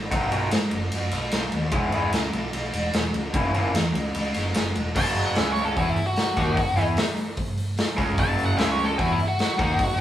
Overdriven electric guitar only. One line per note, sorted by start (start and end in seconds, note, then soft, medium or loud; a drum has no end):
0.11 0.27 B2 medium
0.11 0.27 D#3 medium
0.11 0.28 F#3 medium
0.11 0.28 B3 loud
0.11 0.29 D#4 loud
0.31 0.47 B2 medium
0.31 0.48 D#3 medium
0.31 0.48 F#3 loud
0.31 0.48 B3 medium
0.31 0.49 D#4 medium
1.72 1.88 E3 medium
1.72 1.88 G#3 loud
1.72 1.89 B3 medium
1.72 1.89 E4 loud
1.92 2.08 E3 loud
1.92 2.09 G#3 medium
1.92 2.09 B3 medium
1.92 2.10 E4 loud
3.33 3.50 F#2 medium
3.33 3.50 C#3 loud
3.33 3.51 E3 medium
3.33 3.51 A#3 medium
3.33 3.51 E4 loud
3.53 3.70 F#2 medium
3.53 3.70 C#3 medium
3.53 3.71 E3 medium
3.53 3.71 A#3 loud
3.53 3.71 E4 medium
4.96 5.36 F#2 medium
4.96 5.35 C#3 loud
4.96 5.36 F#3 loud
5.36 5.76 C#3 medium
5.36 5.76 G#3 medium
5.36 5.77 C#4 loud
5.77 5.96 E3 medium
5.77 5.97 B3 loud
5.77 5.97 E4 loud
5.98 muted overdriven electric guitar stroke medium
6.37 6.57 D#3 medium
6.37 6.57 A#3 medium
6.37 6.58 D#4 medium
6.58 6.74 F#2 medium
6.58 6.74 C#3 medium
6.76 6.97 E3 medium
6.76 6.97 B3 medium
6.76 6.98 E4 loud
6.97 muted overdriven electric guitar stroke medium
7.97 8.17 C#3 medium
7.97 8.18 G#3 medium
7.97 8.18 C#4 medium
8.18 8.58 F#2 medium
8.18 8.57 C#3 loud
8.18 8.59 F#3 loud
8.58 8.98 C#3 loud
8.58 8.98 G#3 loud
8.58 8.98 C#4 loud
8.98 9.18 E3 medium
8.98 9.18 B3 loud
8.98 9.19 E4 loud
9.19 muted overdriven electric guitar stroke medium
9.59 9.78 D#3 medium
9.59 9.79 A#3 medium
9.59 9.79 D#4 loud
9.79 9.95 F#2 medium
9.79 9.95 C#3 medium